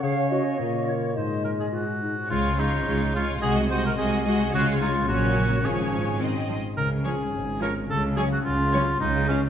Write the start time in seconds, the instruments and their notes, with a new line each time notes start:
Already playing: harp C#4 C#5
0.02 harp C#3, french horn section C#4, clarinet G#4, oboe C#5, flute section F5
0.29 harp F4 C#5, clarinet F#4, flute section D#5
0.59 harp A#2, french horn section A#3, clarinet F4, oboe C#5
0.86 harp F4 C#5, flute section C#5
1.15 harp G#2, french horn section G#3, clarinet D#4, oboe C5, flute section D#5
1.44 harp G#3, oboe A#4
1.60 oboe G#4
1.72 clarinet F4, oboe F#4, harp C5
2.01 clarinet D#4, harp G#4
2.30 double bass section C#2, harp C#3, cello section C#3, viola section G#3, oboe F4, violin section F4 C#5
2.59 viola section G#3, harp G#3, oboe D#4, violin section F4 C#5
2.86 double bass section C#2, cello section C#3, viola section G#3, violin section F4 C#5, harp C#5
3.14 viola section G#3, oboe F4, violin section F4 C#5, harp G#4
3.42 double bass section C2, harp C3, cello section C3, viola section G#3, violin section F#4 D#5, oboe G#4
3.69 harp G#3, viola section G#3, violin section F#4 D#5, oboe C5
3.86 oboe A#4
3.97 double bass section C2, cello section C3, viola section G#3, violin section F#4 D#5, oboe G#4, harp D#5
4.24 viola section G#3, harp F#4, violin section F#4 D#5
4.51 double bass section C#2, cello section C#3, harp C#3, viola section G#3, violin section F4 C#5, oboe F#4
4.80 violin section D#4, harp F4 C#5, oboe F4
5.08 double bass section A#1, cello section A#2, harp A#2, viola section F#3, violin section C#4 C#5, oboe F#4
5.36 harp C#4 C#5
5.63 double bass section G#1, cello section G#2, harp G#2, viola section F3, violin section C#4 C#5, oboe G#4
5.92 harp C#4 C#5
6.20 harp G#2, viola section D#3, violin section C4 D#5
6.48 viola section F3, harp D#4 C5
6.76 double bass section C#2, harp C#3, cello section C#3, oboe A#4
7.05 viola section F3, harp G#3, violin section C#4 C#5, oboe G#4
7.33 double bass section G#1, cello section G#2, harp C#5
7.61 viola section F3, violin section C#4 C#5, harp F4, oboe A#4
7.90 double bass section C#2, harp C#3, cello section C#3, oboe A4
8.16 viola section F#3, harp F#3, violin section C#4 C#5, oboe G#4
8.32 oboe F#4
8.44 double bass section C#2, cello section C#3, oboe F4, harp C#5
8.72 viola section F#3, violin section C#4 C#5, harp F#4
9.00 double bass section C#2, harp C#3, cello section C#3, oboe D#4
9.28 viola section G#3, oboe C#4, violin section C#4 F5, harp F4 C#5